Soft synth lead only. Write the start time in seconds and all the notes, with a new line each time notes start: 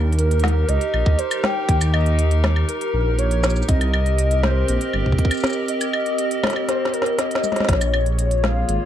0.18 A#4
0.68 D#5
1.19 C5
1.44 G5
1.94 D#5
2.69 A#4
3.18 C#5
3.68 D#5
4.43 C5
5.69 D#5
6.69 C5
6.94 A#4
7.19 D#5
7.69 C#5
8.44 F5